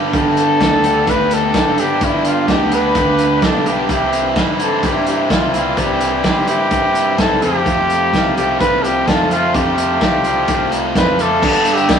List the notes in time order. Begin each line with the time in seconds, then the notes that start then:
Already playing: G2 G3 B3 D4 G4
0.12 G1 G2 D3 G3 B3 D4 G4 A4, kick, closed hi-hat
0.37 closed hi-hat
0.61 D2 G3 B3 D4 G4, kick, snare, closed hi-hat
0.84 G3 B3 D4 G4, closed hi-hat
1.07 D2 G2 D3 G3 B3 D4 G4 B4, kick, closed hi-hat
1.31 A4, closed hi-hat
1.54 G1 G3 B3 D4 G4, kick, snare, closed hi-hat
1.78 G3 B3 D4 G4, closed hi-hat
2.01 G1 G2 D3 G3 B3 D4 E4 G4, kick, closed hi-hat
2.25 F4, closed hi-hat
2.48 D2 G3 B3 D4 G4, kick, snare, closed hi-hat
2.72 G3 B3 D4 G4 B4, closed hi-hat
2.95 D2 G2 D3 G3 B3 D4 G4, kick, closed hi-hat
3.19 closed hi-hat
3.42 B1 G3 B3 D4 G4 A4, kick, snare, closed hi-hat
3.66 G3 B3 D4 G4, closed hi-hat
3.89 C2 C3 E3 G3 C4 E4 G4, kick, closed hi-hat
4.13 closed hi-hat
4.36 G2 E3 G3 C4 E4, kick, snare, closed hi-hat
4.60 G3 C4 E4 A4, closed hi-hat
4.82 G2 C3 E3 G3 C4 E4 G4, kick, closed hi-hat
5.06 G4, closed hi-hat
5.29 C2 E3 G3 C4 E4 F4, kick, snare, closed hi-hat
5.53 G3 C4 E4 F4, closed hi-hat
5.76 C2 C3 E3 G3 C4 E4 G4, kick, closed hi-hat
6.01 closed hi-hat
6.24 G2 E3 G3 C4 E4, kick, snare, closed hi-hat
6.47 G3 C4 E4 G4, closed hi-hat
6.71 G2 C3 E3 G3 C4 E4, kick, closed hi-hat
6.95 closed hi-hat
7.18 C2 E3 G3 C4 E4 A4, kick, snare, closed hi-hat
7.42 F2 C3 F3 A3 C4 F4 G4, closed hi-hat
7.65 F2 C3 F3 A3 C4 F4, kick, closed hi-hat
7.90 closed hi-hat
8.13 C2 F3 A3 C4 F4, kick, snare, closed hi-hat
8.37 F3 A3 C4 F4 G4, closed hi-hat
8.60 C2 F2 C3 F3 A3 C4 F4 B4, kick, closed hi-hat
8.84 G4, closed hi-hat
9.07 F2 F3 A3 C4 F4 A4, kick, snare, closed hi-hat
9.31 F3 A3 C4 F4, closed hi-hat
9.54 F2 C3 F3 A3 C4 F4 G4, kick, closed hi-hat
9.78 closed hi-hat
10.01 C2 F3 A3 C4 F4, kick, snare, closed hi-hat
10.24 F3 A3 C4 F4, closed hi-hat
10.48 C2 F2 C3 F3 A3 C4 F4, kick, closed hi-hat
10.72 closed hi-hat
10.95 F2 F3 A3 C4 F4 B4 G6, kick, snare, closed hi-hat
11.18 F3 A3 C4 F4 A4 D6, closed hi-hat
11.42 G2 D3 G3 B3 D4 G4, kick, crash
11.54 closed hi-hat
11.65 closed hi-hat
11.74 G4 E6, closed hi-hat
11.89 B2 G3 B3 D4 G4, kick, snare, closed hi-hat